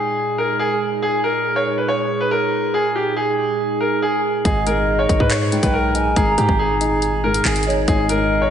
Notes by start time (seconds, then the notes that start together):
Already playing: A#2 G#3 D#4 G#4
0.38 A#4
0.59 G#4
1.02 G#4
1.24 A#4
1.56 C#5
1.78 B4
1.88 C#5
2.21 B4
2.31 A#4
2.74 G#4
2.95 G4
3.16 G#4
3.81 A#4
4.02 G#4
4.45 G#1 G#2 G#4 D#5, kick, closed hi-hat
4.66 G#2 A#4, closed hi-hat
4.99 C#5
5.09 G#1 D#4, kick, closed hi-hat
5.20 G#2 B4, kick
5.31 C#5, clap
5.52 G#2 G5, closed hi-hat
5.63 B1 B4, kick, closed hi-hat
5.74 A#4
5.95 D#4 G#5, closed hi-hat
6.16 G#1 G#2 G#4 A#5, kick, closed hi-hat
6.38 G#2 G4, closed hi-hat
6.49 G#1, kick
6.59 G#4
6.81 D#4, closed hi-hat
7.02 closed hi-hat
7.24 G#2 A#4
7.34 closed hi-hat
7.45 G#1 G#4, clap
7.56 closed hi-hat
7.63 D#4, closed hi-hat
7.67 C#5, closed hi-hat
7.88 G#1 G#2 A#2 G#3 D#4 G#4 D#5, kick, closed hi-hat
8.09 G#2 A#4, closed hi-hat
8.42 C#5